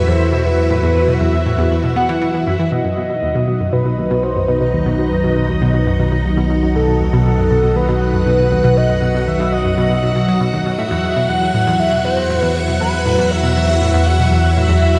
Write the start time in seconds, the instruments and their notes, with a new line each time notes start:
Already playing: analog synth bass E2, string machine F#3 E4 F#4 E5 F#5, synth texture F#4 F#5
0.07 synth arpeggio sound E2, analog synth lead C5
0.20 synth arpeggio sound E2
0.32 synth arpeggio sound B2
0.45 synth arpeggio sound E2, analog synth lead B4
0.57 synth arpeggio sound E2
0.70 synth arpeggio sound A2, analog synth lead B4
0.83 synth arpeggio sound E2
0.96 synth arpeggio sound E2
1.08 synth arpeggio sound B2
1.14 analog synth lead F#5
1.21 synth arpeggio sound E2, analog synth lead E5
1.33 synth arpeggio sound E2
1.46 synth arpeggio sound A2
1.58 synth arpeggio sound E2
1.71 synth arpeggio sound E2
1.84 synth arpeggio sound B2
1.96 synth arpeggio sound B3, analog synth lead F#5
2.09 synth arpeggio sound E3
2.22 synth arpeggio sound E3
2.34 synth arpeggio sound E3
2.47 synth arpeggio sound F#2, analog synth lead E5
2.59 synth arpeggio sound E3
2.72 analog synth bass B1, synth arpeggio sound B2, string machine F#3, analog synth lead D#5
2.85 synth arpeggio sound F#2, string machine D#4 F#4
2.97 synth arpeggio sound B2
3.10 synth arpeggio sound B2
3.23 synth arpeggio sound D#2
3.35 synth arpeggio sound B2
3.42 string machine D#5 F#5
3.48 synth arpeggio sound B2
3.61 synth arpeggio sound F#2
3.73 synth arpeggio sound B2, analog synth lead B4
3.86 synth arpeggio sound B2
3.98 synth arpeggio sound D#2
4.11 synth arpeggio sound B2
4.23 synth arpeggio sound B2, analog synth lead C5
4.36 synth arpeggio sound F#2
4.48 synth arpeggio sound B2, analog synth lead B4
4.61 synth arpeggio sound B2
4.74 synth arpeggio sound D#2
4.86 synth arpeggio sound B2
4.99 synth arpeggio sound B2
5.11 synth arpeggio sound F#2
5.24 synth arpeggio sound B2
5.37 synth arpeggio sound B2
5.49 synth arpeggio sound D#2
5.62 synth arpeggio sound B2
5.74 synth arpeggio sound B2
5.87 synth arpeggio sound F#2
6.00 synth arpeggio sound B2
6.12 synth arpeggio sound B2
6.25 synth arpeggio sound D#2
6.37 synth arpeggio sound B2
6.50 synth arpeggio sound B2
6.63 synth arpeggio sound F#2
6.75 synth arpeggio sound B2, analog synth lead A4
6.88 synth arpeggio sound B2
7.00 synth arpeggio sound D#2
7.13 synth arpeggio sound B2
7.26 synth arpeggio sound B2
7.38 synth arpeggio sound F#2
7.51 synth arpeggio sound B2
7.64 synth arpeggio sound B2
7.76 synth arpeggio sound D#2, analog synth lead B4
7.89 synth arpeggio sound B2
8.01 synth arpeggio sound B2
8.14 synth arpeggio sound F#2
8.27 synth arpeggio sound B2
8.39 synth arpeggio sound B2
8.52 synth arpeggio sound D#2
8.64 synth arpeggio sound B2
8.77 synth arpeggio sound B2, analog synth lead D#5
8.90 synth arpeggio sound F#2
9.02 synth arpeggio sound B2
9.15 synth arpeggio sound B2
9.27 synth arpeggio sound D#2, analog synth lead E5
9.40 synth arpeggio sound B2
9.52 synth arpeggio sound B2, analog synth lead D#5
9.65 synth arpeggio sound F#2
9.78 synth arpeggio sound B2
9.90 synth arpeggio sound B2
10.03 synth arpeggio sound B2
10.16 synth arpeggio sound B2
10.28 synth arpeggio sound F#3
10.41 synth arpeggio sound B2
10.53 synth arpeggio sound D#2
10.66 synth arpeggio sound B2
10.78 analog synth bass E2, synth arpeggio sound A2, analog synth lead E5
10.91 synth arpeggio sound E2, string machine E4
11.04 synth arpeggio sound E2
11.16 synth arpeggio sound B2
11.29 synth arpeggio sound E2, analog synth lead F#5
11.41 synth arpeggio sound E2
11.50 synth arpeggio sound A2, string machine E5
11.67 synth arpeggio sound E2
11.79 synth arpeggio sound E2, analog synth lead E5
11.92 synth arpeggio sound B2
12.05 synth arpeggio sound E2, analog synth lead C5
12.17 synth arpeggio sound E2
12.30 synth arpeggio sound A2
12.40 synth arpeggio sound E2, analog synth lead B4
12.55 synth arpeggio sound E2
12.68 synth arpeggio sound B2
12.80 synth arpeggio sound E2, analog synth lead B4
12.93 synth arpeggio sound E2
13.06 synth arpeggio sound A2
13.18 synth arpeggio sound E2
13.31 synth arpeggio sound E2, analog synth lead E5
13.43 synth arpeggio sound B2
13.56 synth arpeggio sound E2
13.69 synth arpeggio sound E2
13.81 synth arpeggio sound A2
13.94 synth arpeggio sound E2
14.06 synth arpeggio sound E2, analog synth lead F#5
14.19 synth arpeggio sound B2
14.32 synth arpeggio sound E2
14.44 synth arpeggio sound E2
14.57 synth arpeggio sound A2, analog synth lead E5
14.69 synth arpeggio sound E2
14.82 synth arpeggio sound E2, analog synth lead E5
14.95 synth arpeggio sound B2